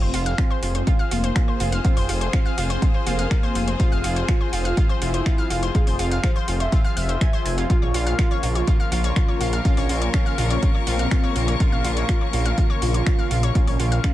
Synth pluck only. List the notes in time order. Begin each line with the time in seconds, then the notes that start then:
0.02 C5
0.14 F4
0.26 F5
0.38 F4
0.50 C5
0.63 F4
0.75 C5
0.87 F4
0.99 F5
1.11 F4
1.24 C5
1.36 F4
1.48 C5
1.60 F4
1.72 F5
1.85 F4
1.97 C5
2.09 F4
2.21 C5
2.33 F4
2.46 F5
2.58 F4
2.70 C5
2.82 F4
2.94 C5
3.06 F4
3.19 F5
3.31 F4
3.43 C5
3.55 F4
3.68 C5
3.80 F4
3.92 F5
4.04 F4
4.16 C5
4.29 F4
4.41 C5
4.53 F4
4.65 F5
4.77 F4
4.89 C5
5.02 F4
5.14 C5
5.26 F4
5.38 F5
5.50 F4
5.63 C5
5.75 F4
5.87 C5
5.99 F4
6.11 F5
6.23 F4
6.36 C5
6.48 F4
6.60 C5
6.72 F4
6.84 F5
6.97 F5
7.09 C5
7.21 G#5
7.33 C5
7.45 G#5
7.58 F4
7.70 F4
7.82 C#5
7.94 F4
8.06 F5
8.19 F4
8.31 C#5
8.43 F4
8.55 C#5
8.67 F4
8.80 F5
8.92 F4
9.04 C#5
9.16 F4
9.28 C#5
9.41 F4
9.53 F5
9.65 F4
9.77 C#5
9.89 F4
10.02 C#5
10.14 F4
10.26 F5
10.38 F4
10.50 C#5
10.62 F4
10.75 C#5
10.87 F4
10.99 F5
11.11 F4
11.24 C#5
11.36 F4
11.48 C#5
11.60 F4
11.72 F5
11.84 F4
11.97 C#5
12.09 F4
12.21 C#5
12.33 F4
12.46 F5
12.58 F4
12.70 C#5
12.82 F4
12.94 C#5
13.06 F4
13.19 F5
13.31 F4
13.43 C#5
13.55 F4
13.67 C#5
13.79 F4
13.92 F5
14.04 F4